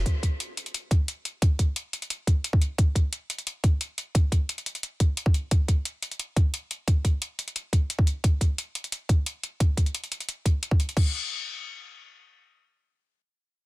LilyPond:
\new DrumStaff \with { instrumentName = "Drums" } \drummode { \time 4/4 \tempo 4 = 176 <hh bd>8 <hh bd>8 hh8 hh16 hh16 hh8 <hh bd>8 hh8 hh8 | <hh bd>8 <hh bd>8 hh8 hh16 hh16 hh8 <hh bd>8 hh16 bd16 hh8 | <hh bd>8 <hh bd>8 hh8 hh16 hh16 hh8 <hh bd>8 hh8 hh8 | <hh bd>8 <hh bd>8 hh16 hh16 hh16 hh16 hh8 <hh bd>8 hh16 bd16 hh8 |
<hh bd>8 <hh bd>8 hh8 hh16 hh16 hh8 <hh bd>8 hh8 hh8 | <hh bd>8 <hh bd>8 hh8 hh16 hh16 hh8 <hh bd>8 hh16 bd16 hh8 | <hh bd>8 <hh bd>8 hh8 hh16 hh16 hh8 <hh bd>8 hh8 hh8 | <hh bd>8 <hh bd>16 hh16 hh16 hh16 hh16 hh16 hh8 <hh bd>8 hh16 bd16 hh16 hh16 |
<cymc bd>4 r4 r4 r4 | r4 r4 r4 r4 | }